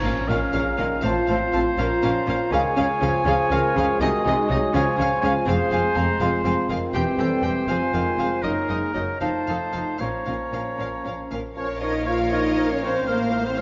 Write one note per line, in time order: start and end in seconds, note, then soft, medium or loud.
0.00 0.12 A#1 medium
0.00 0.25 A#2 medium
0.00 0.11 A#2 medium
0.00 0.25 F3 medium
0.00 1.00 C#4 medium
0.00 2.48 F4 medium
0.00 0.30 C#5 medium
0.00 0.25 A#5 medium
0.04 0.12 C#4 medium
0.04 1.03 C#4 medium
0.04 0.13 A#4 medium
0.04 0.12 F5 soft
0.28 0.36 A#1 medium
0.28 0.37 A#2 medium
0.28 0.39 D#3 medium
0.28 0.37 C#4 medium
0.28 0.38 A#4 medium
0.28 1.03 F5 medium
0.28 0.37 F5 medium
0.28 1.07 A#5 medium
0.53 0.61 A#1 medium
0.53 0.62 A#2 medium
0.53 0.80 C#3 medium
0.53 0.62 C#4 medium
0.53 0.64 A#4 medium
0.53 0.62 F5 medium
0.77 0.87 A#1 medium
0.77 0.86 A#2 medium
0.77 1.05 D#3 medium
0.77 0.85 C#4 medium
0.77 0.86 A#4 medium
0.77 0.85 F5 medium
1.02 1.12 A1 medium
1.02 1.11 A2 medium
1.02 1.77 F3 medium
1.02 1.11 C4 medium
1.02 1.75 C4 medium
1.02 1.77 F4 medium
1.02 2.49 C5 medium
1.02 1.13 C5 medium
1.02 1.10 F5 medium
1.02 1.28 A5 medium
1.27 1.37 A1 medium
1.27 1.37 A2 medium
1.27 1.38 C4 medium
1.27 1.38 C5 medium
1.27 1.35 F5 medium
1.27 1.35 A5 medium
1.52 1.61 A1 medium
1.52 1.61 A2 medium
1.52 1.61 C4 medium
1.52 1.60 C5 medium
1.52 1.61 F5 medium
1.52 1.59 A5 medium
1.78 1.86 A#1 medium
1.78 1.86 A#2 medium
1.78 2.52 F3 medium
1.78 2.48 C#4 medium
1.78 1.86 C#4 medium
1.78 2.54 F4 medium
1.78 1.87 A#4 medium
1.78 1.86 F5 medium
1.78 2.53 A#5 medium
2.02 2.11 A#1 medium
2.02 2.11 A#2 medium
2.02 2.11 C#4 medium
2.02 2.10 A#4 medium
2.02 2.10 F5 medium
2.26 2.34 A#1 medium
2.26 2.35 A#2 medium
2.26 2.36 C#4 medium
2.26 2.35 A#4 medium
2.26 2.36 F5 medium
2.51 2.59 C#2 medium
2.51 2.60 C#3 medium
2.51 2.76 D#3 medium
2.51 5.43 G#3 medium
2.51 2.60 C#4 medium
2.51 3.96 F4 medium
2.51 3.26 G#4 medium
2.51 2.61 G#4 medium
2.51 4.03 C#5 medium
2.51 2.61 F5 medium
2.51 4.00 G#5 medium
2.76 2.85 C#2 medium
2.76 2.88 C#3 medium
2.76 2.85 C#3 medium
2.76 2.84 C#4 medium
2.76 2.86 G#4 medium
2.76 2.85 F5 medium
3.01 3.10 C#2 medium
3.01 3.09 C#3 medium
3.01 3.25 F3 medium
3.01 3.09 C#4 medium
3.01 3.09 G#4 medium
3.01 3.10 F5 medium
3.25 3.34 C#2 medium
3.25 3.34 C#3 medium
3.25 3.99 F3 medium
3.25 3.34 C#4 medium
3.25 3.34 G#4 medium
3.25 3.51 G#4 medium
3.25 3.35 F5 medium
3.50 3.58 C#2 medium
3.50 3.60 C#3 medium
3.50 3.58 C#4 medium
3.50 3.59 G#4 medium
3.50 3.78 A#4 medium
3.50 3.59 F5 medium
3.75 3.83 C#2 medium
3.75 3.84 C#3 medium
3.75 3.85 C#4 medium
3.75 4.02 G#4 medium
3.75 3.84 G#4 medium
3.75 3.86 F5 medium
4.00 4.08 C2 medium
4.00 4.09 C3 medium
4.00 4.26 D#3 medium
4.00 4.08 D#4 medium
4.00 4.70 D#4 medium
4.00 4.74 F#4 medium
4.00 4.09 G#4 medium
4.00 4.09 D#5 medium
4.00 4.76 D#5 medium
4.00 4.72 G#5 medium
4.24 4.33 C2 medium
4.24 4.34 C3 medium
4.24 4.50 G#3 medium
4.24 4.33 D#4 medium
4.24 4.35 G#4 medium
4.24 4.35 D#5 medium
4.49 4.58 C2 medium
4.49 4.57 C3 medium
4.49 4.73 F#3 medium
4.49 4.57 D#4 medium
4.49 4.59 G#4 medium
4.49 4.59 D#5 medium
4.72 4.82 C#2 medium
4.72 4.82 C#3 medium
4.72 5.46 F3 medium
4.72 4.81 C#4 medium
4.72 5.47 F4 medium
4.72 5.43 F4 medium
4.72 4.82 G#4 medium
4.72 4.97 C#5 medium
4.72 4.82 F5 medium
4.72 5.50 G#5 medium
4.98 5.06 C#2 medium
4.98 5.06 C#3 medium
4.98 5.06 C#4 medium
4.98 5.06 G#4 medium
4.98 5.21 C#5 medium
4.98 5.08 F5 medium
5.21 5.31 C#2 medium
5.21 5.31 C#3 medium
5.21 5.30 C#4 medium
5.21 5.31 G#4 medium
5.21 5.33 C#5 medium
5.21 5.32 F5 medium
5.46 5.55 F1 medium
5.46 5.55 F2 medium
5.46 5.94 F3 medium
5.46 6.77 G#3 medium
5.46 5.55 C4 medium
5.46 8.40 C4 medium
5.46 5.54 G#4 medium
5.46 5.94 G#4 medium
5.46 6.65 C5 medium
5.46 5.72 F5 medium
5.46 5.57 F5 medium
5.71 5.79 F1 medium
5.71 5.79 F2 medium
5.71 5.80 C4 medium
5.71 5.79 G#4 medium
5.71 5.79 F5 medium
5.71 5.97 G#5 medium
5.95 6.04 F1 medium
5.95 6.04 F2 medium
5.95 6.04 C4 medium
5.95 6.04 G#4 medium
5.95 6.03 F5 medium
5.95 6.23 A#5 medium
6.20 6.29 F1 medium
6.20 6.28 F2 medium
6.20 6.43 G#3 medium
6.20 6.28 C4 medium
6.20 6.97 F4 medium
6.20 6.29 G#4 medium
6.20 6.28 F5 medium
6.20 6.70 C6 medium
6.44 6.52 F1 medium
6.44 6.53 F2 medium
6.44 6.71 F3 medium
6.44 6.53 C4 medium
6.44 6.53 G#4 medium
6.44 6.53 F5 medium
6.69 6.78 F1 medium
6.69 6.78 F2 medium
6.69 6.96 D#3 medium
6.69 6.78 C4 medium
6.69 6.77 G#4 medium
6.69 6.78 F5 medium
6.94 7.02 E1 medium
6.94 7.03 E2 medium
6.94 7.70 E3 medium
6.94 7.64 G3 medium
6.94 7.03 C4 medium
6.94 7.02 G4 medium
6.94 7.21 G4 medium
6.94 8.44 C5 medium
6.94 7.02 G5 medium
6.94 7.71 G5 medium
7.18 7.26 E1 medium
7.18 7.26 E2 medium
7.18 7.27 C4 medium
7.18 7.26 G4 medium
7.18 7.46 A4 medium
7.18 7.28 G5 medium
7.42 7.50 E1 medium
7.42 7.51 E2 medium
7.42 7.52 C4 soft
7.42 7.50 G4 soft
7.42 7.69 G4 medium
7.42 7.51 G5 soft
7.68 7.76 F1 medium
7.68 7.76 F2 medium
7.68 7.93 F3 medium
7.68 8.40 G#3 medium
7.68 7.78 C4 medium
7.68 8.45 F4 medium
7.68 7.77 G#4 medium
7.68 7.76 F5 medium
7.68 8.43 G#5 medium
7.93 8.01 F1 medium
7.93 8.02 F2 medium
7.93 8.20 D#3 medium
7.93 8.02 C4 soft
7.93 8.02 G#4 soft
7.93 8.02 F5 soft
8.18 8.27 F1 medium
8.18 8.26 F2 medium
8.18 8.45 F3 medium
8.18 8.26 C4 soft
8.18 8.27 G#4 soft
8.18 8.28 F5 soft
8.43 8.51 F#1 medium
8.43 8.51 F#2 medium
8.43 8.68 F#3 medium
8.43 9.17 A#3 medium
8.43 9.95 D#4 medium
8.43 9.20 D#4 medium
8.43 8.52 D#4 medium
8.43 8.51 A#4 soft
8.43 9.20 A#4 medium
8.43 8.51 D#5 medium
8.43 9.23 A#5 soft
8.69 8.77 F#1 soft
8.69 8.77 F#2 medium
8.69 8.94 G#3 medium
8.69 8.77 D#4 soft
8.69 8.79 A#4 soft
8.69 8.77 D#5 soft
8.94 9.03 F#1 medium
8.94 9.02 F#2 soft
8.94 9.20 F#3 medium
8.94 9.03 D#4 soft
8.94 9.04 A#4 soft
8.94 9.03 D#5 soft
9.21 9.29 F1 soft
9.21 9.29 F2 soft
9.21 9.98 F3 soft
9.21 9.96 A3 medium
9.21 9.29 D#4 soft
9.21 10.03 D#4 soft
9.21 9.29 A4 soft
9.21 10.01 C5 soft
9.21 9.29 F5 soft
9.21 10.00 A5 soft
9.47 9.55 F1 soft
9.47 9.55 F2 soft
9.47 9.57 D#4 soft
9.47 9.58 A4 soft
9.47 9.55 F5 soft
9.72 9.82 F1 soft
9.72 9.80 F2 soft
9.72 9.82 D#4 soft
9.72 9.81 A4 soft
9.72 9.80 F5 soft
9.98 10.09 A#1 soft
9.98 10.07 A#2 soft
9.98 11.29 F3 soft
9.98 11.28 A#3 soft
9.98 11.28 C#4 soft
9.98 10.10 C#4 soft
9.98 11.33 C#4 soft
9.98 10.08 A#4 soft
9.98 11.32 C#5 soft
9.98 10.06 F5 soft
9.98 11.29 A#5 soft
10.26 10.36 A#1 soft
10.26 10.34 A#2 soft
10.26 10.36 C#4 soft
10.26 10.35 A#4 soft
10.26 10.35 F5 soft
10.52 10.62 A#1 soft
10.52 10.60 A#2 soft
10.52 10.61 C#4 soft
10.52 10.62 A#4 soft
10.52 10.61 F5 soft
10.78 10.88 A#1 soft
10.78 10.87 A#2 soft
10.78 10.86 C#4 soft
10.78 10.89 A#4 soft
10.78 10.88 F5 soft
11.04 11.13 A#1 soft
11.04 11.13 A#2 soft
11.04 11.12 C#4 soft
11.04 11.13 A#4 soft
11.04 11.14 F5 soft
11.31 11.40 A#1 soft
11.31 11.39 A#2 soft
11.31 11.40 C#4 soft
11.31 11.40 A#4 soft
11.31 11.39 F5 soft
11.56 13.04 A#1 medium
11.56 13.04 A#2 soft
11.56 11.68 F3 soft
11.56 11.81 C#4 medium
11.56 13.04 A#4 soft
11.56 11.69 A#4 soft
11.56 13.04 C#5 soft
11.56 11.83 C#5 medium
11.56 11.81 C#5 medium
11.56 11.69 C#5 soft
11.56 13.61 F5 soft
11.81 11.92 F3 soft
11.81 12.08 D#4 medium
11.81 11.94 A#4 soft
11.81 11.94 C#5 soft
11.81 12.08 D#5 medium
11.81 12.07 D#5 medium
12.06 12.18 F3 soft
12.06 12.32 F4 medium
12.06 12.18 C#5 soft
12.06 12.31 F5 medium
12.06 12.34 F5 medium
12.10 12.21 A#4 soft
12.31 12.43 F3 soft
12.31 12.70 D#4 medium
12.31 12.45 A#4 soft
12.31 12.44 C#5 soft
12.31 12.70 D#5 medium
12.57 12.68 F3 soft
12.57 12.70 A#4 soft
12.57 12.69 C#5 soft
12.71 12.83 C#4 medium
12.71 12.83 C#5 medium
12.71 12.77 C#5 medium
12.82 12.94 F3 soft
12.82 13.08 C4 medium
12.82 12.95 A#4 soft
12.82 13.09 C5 medium
12.82 13.07 C5 medium
12.82 12.95 C#5 soft
13.07 13.61 A1 medium
13.07 13.61 A2 medium
13.07 13.18 F3 soft
13.07 13.44 A#3 medium
13.07 13.44 A#4 medium
13.07 13.47 A#4 medium
13.07 13.61 C5 medium
13.07 13.20 C5 soft
13.07 13.19 F5 soft
13.31 13.43 F3 soft
13.31 13.44 C5 soft
13.31 13.44 F5 soft
13.44 13.59 C4 medium
13.44 13.57 C5 medium
13.44 13.60 C5 soft
13.57 13.61 F3 soft
13.57 13.61 C#4 medium
13.57 13.61 C5 soft
13.57 13.61 C#5 medium
13.57 13.61 F5 soft